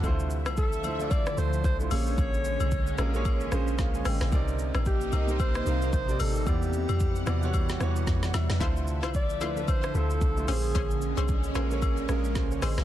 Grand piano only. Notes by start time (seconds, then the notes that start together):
0.03 D3 A3 E4 F4 C5
0.83 D3 A3 E4 F4 C5
0.98 D3 A3 E4 F4 D5
1.36 D3 A3 E4 F4 C5
1.79 D3 A3 E4 F4 C5
1.90 A#2 A#3 C#4 G#4 C#5
2.97 A#2 A#3 C#4 G#4 A#4
3.13 A#2 A#3 C#4 G#4 C#5
3.51 A#2 A#3 C#4 G#4 C5
3.79 C#5 F5
3.95 F5 G#5
4.06 D#5 G5
4.22 C#5 F5
4.31 C3 C4 D#4 A#4 D5
5.12 C3 C4 D#4 A#4 D#5
5.27 C3 C4 D#4 A#4 C5
5.65 C3 C4 D#4 A#4 F5
6.08 C3 C4 D#4 A#4 D5
6.46 E3 B3 G4 D5 F#5
7.26 E3 B3 F#4 G4 D5
7.41 E3 B3 F#4 G4 C#5
7.79 E3 B3 F#4 G4 C#5
8.24 D5 F#5
8.35 C#5 E5
8.50 B4 D5
8.60 D3 A3 E4 F4 C5
9.40 D3 A3 E4 F4 B4
9.56 D3 A3 E4 F4 B4
9.94 D3 A3 E4 F4 C5
10.36 D3 A3 E4 F4 C5
10.47 A#2 A#3 C#4 G#4 C5
11.54 A#2 A#3 C#4 G#4 A#4
11.70 A#2 A#3 C#4 G#4 C#5
12.08 A#2 A#3 C#4 G#4 A#4
12.36 G#4 C5
12.52 A#4 C#5
12.63 C5 D#5
12.79 C#5 F5